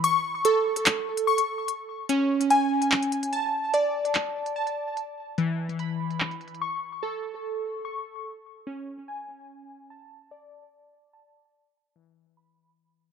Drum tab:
HH |x-----------x--------x--x--------x-----x--------|x-----------x--------x--x--------x-----x--x--x--|x-----------x--------x--x--------x-----x--------|x-----------x--------x--x--------x-----x--x-x-x-|
CP |------------------------x-----------------------|------------------------------------x-----------|------------------------x-----------------------|------------------------------------x-----------|

HH |------------------------------------------------|------------------------------------------------|------------------------------------------------|------------------------------------------------|
CP |------------------------------------------------|------------------------------------------------|------------------------------------------------|------------------------------------------------|